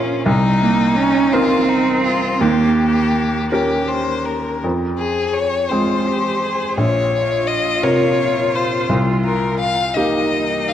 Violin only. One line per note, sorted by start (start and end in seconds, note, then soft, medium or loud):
0.00 0.26 C#4 medium
0.27 1.34 D#4 loud
1.32 1.71 F4 loud
1.69 2.03 D#4 loud
2.04 2.43 F4 loud
2.42 3.45 G4 medium
3.51 3.89 G4 medium
3.87 4.27 C5 medium
4.25 4.62 A#4 medium
4.98 5.35 G#4 medium
5.34 5.71 C#5 medium
5.70 6.77 C5 medium
6.77 7.49 C#5 loud
7.47 7.85 D#5 medium
7.83 8.56 C#5 medium
8.55 8.89 C5 medium
9.24 9.57 A#4 medium
9.60 9.96 F5 loud
9.95 10.70 D#5 medium
10.68 10.73 F5 medium